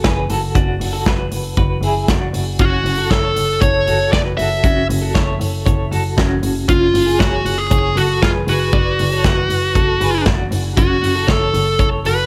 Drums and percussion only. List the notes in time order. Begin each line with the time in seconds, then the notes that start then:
0.04 kick, snare, closed hi-hat
0.30 open hi-hat
0.55 kick, closed hi-hat
0.81 open hi-hat
1.06 kick, snare, closed hi-hat
1.32 open hi-hat
1.57 kick, closed hi-hat
1.83 open hi-hat
2.08 kick, snare, closed hi-hat
2.34 open hi-hat
2.59 kick, closed hi-hat
2.86 open hi-hat
3.11 kick, snare, closed hi-hat
3.36 open hi-hat
3.62 kick, closed hi-hat
3.87 open hi-hat
4.13 kick, snare, closed hi-hat
4.39 open hi-hat
4.64 kick, closed hi-hat
4.90 open hi-hat
5.15 kick, snare, closed hi-hat
5.41 open hi-hat
5.66 kick, closed hi-hat
5.92 open hi-hat
6.18 kick, snare, closed hi-hat
6.43 open hi-hat
6.69 kick, closed hi-hat
6.95 open hi-hat
7.20 kick, snare, closed hi-hat
7.46 open hi-hat
7.71 kick, closed hi-hat
7.97 open hi-hat
8.23 kick, snare, closed hi-hat
8.48 open hi-hat
8.73 kick, closed hi-hat
8.99 open hi-hat
9.24 kick, snare, closed hi-hat
9.50 open hi-hat
9.75 kick, closed hi-hat
10.01 open hi-hat
10.26 kick, snare, closed hi-hat
10.52 open hi-hat
10.77 kick, closed hi-hat
11.04 open hi-hat
11.28 kick, snare, closed hi-hat
11.54 open hi-hat
11.79 kick, closed hi-hat
12.05 open hi-hat